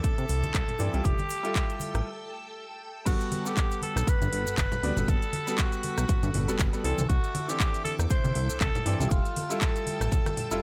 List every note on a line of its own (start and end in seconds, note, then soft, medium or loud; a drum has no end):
0.00 0.15 C3 soft
0.00 0.76 E3 medium
0.00 0.77 C4 medium
0.00 0.77 D4 medium
0.00 0.77 A4 medium
0.00 3.03 A4 medium
0.00 1.07 A4 loud
0.00 1.01 E5 medium
0.00 1.03 D6 medium
0.00 kick loud
0.00 closed hi-hat loud
0.00 cabasa medium
0.18 0.25 C3 medium
0.18 closed hi-hat soft
0.18 cabasa soft
0.29 0.43 C2 loud
0.29 open hi-hat loud
0.29 cabasa medium
0.43 0.52 C2 soft
0.43 closed hi-hat soft
0.43 high conga medium
0.43 cabasa soft
0.54 0.63 C2 medium
0.54 kick loud
0.54 clap loud
0.54 closed hi-hat medium
0.54 cabasa soft
0.68 closed hi-hat soft
0.68 low conga medium
0.79 0.89 G2 medium
0.79 0.91 E3 medium
0.79 0.91 C4 medium
0.79 0.92 D4 medium
0.79 0.92 D5 loud
0.79 open hi-hat medium
0.79 cabasa medium
0.93 1.01 C2 loud
0.93 1.15 G3 medium
0.93 1.15 E4 medium
0.93 1.15 F4 medium
0.93 1.15 G4 medium
0.93 closed hi-hat soft
0.93 cabasa soft
1.04 1.14 F1 loud
1.04 2.06 G4 loud
1.04 3.05 G5 medium
1.04 3.05 E6 medium
1.04 kick loud
1.04 closed hi-hat medium
1.04 cabasa medium
1.18 closed hi-hat soft
1.18 high conga loud
1.18 cabasa soft
1.29 open hi-hat loud
1.29 cabasa loud
1.43 2.05 G3 medium
1.43 2.05 E4 medium
1.43 2.06 F4 medium
1.43 2.06 A4 medium
1.43 closed hi-hat soft
1.43 cabasa soft
1.55 kick loud
1.55 clap loud
1.55 closed hi-hat medium
1.55 cabasa medium
1.70 closed hi-hat soft
1.70 cabasa soft
1.80 open hi-hat loud
1.80 high conga medium
1.80 cabasa medium
1.94 2.02 A1 medium
1.94 cross-stick medium
1.94 closed hi-hat soft
1.94 cabasa soft
3.05 3.15 G1 loud
3.05 3.40 G3 loud
3.05 3.40 B3 medium
3.05 3.40 F#4 medium
3.05 3.48 F#4 loud
3.05 10.62 A4 medium
3.05 3.40 A4 loud
3.05 6.81 F#5 medium
3.05 6.81 B5 medium
3.05 kick loud
3.05 closed hi-hat medium
3.05 crash loud
3.05 cabasa medium
3.05 shaker medium
3.20 closed hi-hat soft
3.20 cabasa soft
3.20 shaker soft
3.32 open hi-hat loud
3.32 high conga medium
3.45 4.80 G3 medium
3.45 4.80 B3 medium
3.45 3.82 G4 loud
3.45 4.81 A4 medium
3.45 4.81 F#5 medium
3.45 closed hi-hat soft
3.45 cabasa medium
3.45 shaker medium
3.57 kick loud
3.57 clap loud
3.57 closed hi-hat medium
3.57 cabasa medium
3.57 shaker medium
3.71 closed hi-hat soft
3.71 cabasa soft
3.71 shaker soft
3.82 4.10 A4 loud
3.82 open hi-hat loud
3.82 high conga medium
3.96 4.03 B1 medium
3.96 cross-stick medium
3.96 closed hi-hat soft
3.96 cabasa medium
3.96 shaker medium
4.07 4.19 G2 soft
4.07 4.57 B4 loud
4.07 kick loud
4.07 closed hi-hat loud
4.07 cabasa medium
4.07 shaker medium
4.21 4.29 G2 medium
4.21 closed hi-hat soft
4.21 high conga medium
4.21 cabasa soft
4.21 shaker soft
4.32 4.46 G1 loud
4.32 open hi-hat loud
4.46 4.56 G1 soft
4.46 closed hi-hat soft
4.46 cabasa medium
4.46 shaker medium
4.58 4.67 G1 loud
4.58 5.10 B4 loud
4.58 kick loud
4.58 clap loud
4.58 closed hi-hat loud
4.58 high conga medium
4.58 cabasa medium
4.58 shaker medium
4.72 closed hi-hat soft
4.72 low conga loud
4.72 cabasa soft
4.72 shaker soft
4.83 4.92 D2 medium
4.83 4.95 G3 medium
4.83 4.95 B3 medium
4.83 4.95 F#4 medium
4.83 4.95 D5 loud
4.83 open hi-hat loud
4.97 5.04 G1 loud
4.97 5.18 G3 medium
4.97 5.18 B3 medium
4.97 5.18 F#4 medium
4.97 5.18 A4 medium
4.97 closed hi-hat soft
4.97 high conga loud
4.97 low conga loud
4.97 cabasa medium
4.97 shaker medium
5.08 5.17 G1 loud
5.08 5.60 A4 loud
5.08 kick loud
5.08 closed hi-hat medium
5.08 cabasa medium
5.08 shaker soft
5.22 closed hi-hat soft
5.22 cabasa soft
5.22 shaker soft
5.33 open hi-hat loud
5.33 high conga medium
5.47 6.45 G3 medium
5.47 6.45 B3 medium
5.47 6.45 F#4 medium
5.47 6.46 A4 medium
5.47 closed hi-hat soft
5.47 cabasa medium
5.47 shaker medium
5.58 6.59 F#4 medium
5.58 kick loud
5.58 clap loud
5.58 closed hi-hat medium
5.58 cabasa medium
5.58 shaker medium
5.72 closed hi-hat soft
5.72 cabasa soft
5.72 shaker soft
5.83 open hi-hat loud
5.83 high conga medium
5.97 6.05 B1 medium
5.97 cross-stick medium
5.97 closed hi-hat soft
5.97 cabasa medium
5.97 shaker medium
6.09 kick loud
6.09 closed hi-hat medium
6.09 low conga medium
6.09 cabasa medium
6.09 shaker medium
6.23 6.30 G2 loud
6.23 closed hi-hat soft
6.23 high conga loud
6.23 cabasa soft
6.23 shaker soft
6.34 6.47 G1 loud
6.34 open hi-hat loud
6.34 low conga loud
6.48 6.57 G1 soft
6.48 6.69 G3 medium
6.48 6.69 B3 medium
6.48 6.69 F#4 medium
6.48 6.70 A4 loud
6.48 closed hi-hat soft
6.48 cabasa medium
6.48 shaker medium
6.59 6.68 G1 medium
6.59 kick loud
6.59 clap loud
6.59 closed hi-hat medium
6.59 high conga medium
6.59 cabasa medium
6.59 shaker medium
6.73 6.83 G3 medium
6.73 6.83 B3 medium
6.73 6.83 F#4 medium
6.73 6.83 A4 loud
6.73 closed hi-hat soft
6.73 cabasa soft
6.73 shaker soft
6.84 6.93 C2 medium
6.84 6.99 E3 medium
6.84 7.00 C4 medium
6.84 7.00 D4 medium
6.84 7.08 A4 loud
6.84 7.00 A4 loud
6.84 9.09 E5 medium
6.84 9.09 D6 medium
6.84 open hi-hat loud
6.98 7.06 C2 loud
6.98 closed hi-hat soft
6.98 high conga loud
6.98 cabasa medium
6.98 shaker medium
7.09 7.19 C2 loud
7.09 7.50 F#4 loud
7.09 kick loud
7.09 closed hi-hat medium
7.09 cabasa medium
7.09 shaker soft
7.24 closed hi-hat soft
7.24 cabasa soft
7.24 shaker soft
7.35 open hi-hat loud
7.35 high conga loud
7.48 8.83 E3 medium
7.48 8.84 C4 medium
7.48 8.84 D4 medium
7.48 7.84 G4 loud
7.48 8.84 A4 medium
7.48 closed hi-hat soft
7.48 cabasa medium
7.48 shaker medium
7.60 kick loud
7.60 clap loud
7.60 closed hi-hat medium
7.60 cabasa medium
7.60 shaker medium
7.74 closed hi-hat soft
7.74 cabasa soft
7.74 shaker soft
7.85 7.96 A4 loud
7.85 open hi-hat loud
7.85 high conga medium
7.99 8.06 E2 medium
7.99 cross-stick medium
7.99 closed hi-hat soft
7.99 cabasa medium
7.99 shaker medium
8.10 8.22 C3 soft
8.10 8.57 C5 loud
8.10 kick loud
8.10 closed hi-hat medium
8.10 cabasa medium
8.10 shaker medium
8.24 8.32 C3 medium
8.24 closed hi-hat soft
8.24 high conga loud
8.24 cabasa soft
8.24 shaker soft
8.35 8.49 C2 loud
8.35 open hi-hat loud
8.49 8.59 C2 soft
8.49 closed hi-hat soft
8.49 cabasa medium
8.49 shaker medium
8.60 8.70 C2 loud
8.60 9.12 A4 loud
8.60 kick loud
8.60 clap loud
8.60 closed hi-hat loud
8.60 high conga medium
8.60 cabasa medium
8.60 shaker medium
8.75 closed hi-hat soft
8.75 low conga loud
8.75 cabasa soft
8.75 shaker soft
8.86 8.95 G2 medium
8.86 8.98 E3 loud
8.86 8.98 C4 medium
8.86 8.98 D4 medium
8.86 8.98 D5 loud
8.86 open hi-hat loud
9.00 9.07 C2 loud
9.00 9.21 G3 medium
9.00 9.21 E4 medium
9.00 9.21 F4 medium
9.00 9.22 G4 medium
9.00 closed hi-hat soft
9.00 high conga medium
9.00 low conga loud
9.00 cabasa medium
9.00 shaker medium
9.10 9.20 F1 loud
9.10 9.62 F4 loud
9.10 10.62 G5 medium
9.10 10.62 E6 medium
9.10 kick loud
9.10 closed hi-hat medium
9.10 cabasa medium
9.10 shaker soft
9.25 closed hi-hat soft
9.25 cabasa soft
9.25 shaker soft
9.36 open hi-hat loud
9.36 high conga medium
9.49 10.48 G3 medium
9.49 10.48 E4 medium
9.49 10.48 F4 medium
9.49 10.49 A4 medium
9.49 closed hi-hat soft
9.49 cabasa medium
9.49 shaker medium
9.60 10.62 A4 medium
9.60 kick loud
9.60 clap loud
9.60 closed hi-hat medium
9.60 cabasa medium
9.60 shaker medium
9.76 closed hi-hat soft
9.76 cabasa soft
9.76 shaker soft
9.87 open hi-hat loud
9.87 high conga medium
10.01 10.08 A1 medium
10.01 cross-stick medium
10.01 closed hi-hat soft
10.01 cabasa medium
10.01 shaker medium
10.12 kick loud
10.12 closed hi-hat medium
10.12 low conga medium
10.12 cabasa medium
10.12 shaker medium
10.26 cross-stick medium
10.26 closed hi-hat soft
10.26 high conga loud
10.26 cabasa soft
10.26 shaker soft
10.37 open hi-hat loud
10.37 low conga medium
10.51 10.60 F1 soft
10.51 10.62 G3 medium
10.51 10.62 E4 medium
10.51 10.62 F4 medium
10.51 10.62 A4 loud
10.51 closed hi-hat soft
10.51 cabasa medium
10.51 shaker medium